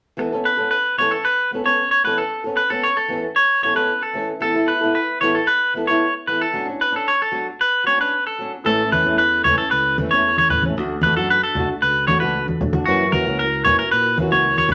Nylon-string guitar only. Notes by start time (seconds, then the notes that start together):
0.17 E3 B3 A4, muted nylon-string guitar stroke
0.32 B3 C#4 A4
0.57 B3 C#4 A4
0.98 E3 B3 C#4 A4
1.51 B3 C#4 A4, muted nylon-string guitar stroke
1.64 B3 C#4 A4
2.04 E3 B3 C#4 A4
2.44 B3 C#4 A4
2.70 B3 C#4 A4
3.08 E3 B3 C#4
3.12 A4
3.62 E3 B3 C#4 A4
3.75 C#4 A4
3.79 B3
4.13 E3 C#4 A4, muted nylon-string guitar stroke
4.40 E3 B3 E4 A4
4.54 E4 A4
4.81 B3 E4 A4
5.21 E3 B3 E4 A4
5.74 E3 B3 E4 A4
5.89 B3 E4 A4
6.28 E3 B3 E4 A4
6.53 F#3 C#4 D4
6.66 C#4 D4
6.92 C#4 D4
7.32 F#3 D4, muted nylon-string guitar stroke
7.84 F#3 C#4 D4
7.98 C#4 D4
8.38 F#3 C#4 D4
8.65 E3 A3 C#4
8.91 E3 A3 C#4
9.06 A3 C#4
9.45 E3 A3 C#4
9.99 E3 A3 C#4
10.13 A3 C#4
10.65 A3 C#4
10.77 A3 D4 F#4
11.04 A3 D4 F#4
11.17 D4 F#4
11.56 A3 D4 F#4
12.08 A3 F#4, muted nylon-string guitar stroke
12.21 D4 F#4
12.74 D4 F#4
12.87 E3 A#3 C#4 F#4
13.12 E3 A#3 C#4 F#4
13.26 A#3 C#4 F#4
13.65 E3 A#3 C#4
14.18 E3 A#3 C#4 F#4
14.30 A#3 C#4 F#4